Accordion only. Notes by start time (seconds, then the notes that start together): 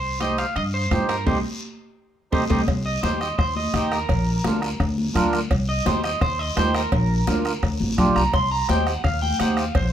0.20 D#4 G4 C5
0.91 D#4 G4 C5
1.27 D#4 G4 C5
2.32 D#4 G4 C5
2.50 D#4 G4 C5
3.03 D#4 G4 C5
3.74 D#4 G4 D#5
4.44 D4 F4 A#4
5.15 D4 F4 A#4
5.85 D#4 G4 C5
6.56 D#4 G4 C5
7.27 D4 F4 A#4
7.98 D4 F4 G4
8.68 D#4 G4 C5
9.39 D#4 G4 C5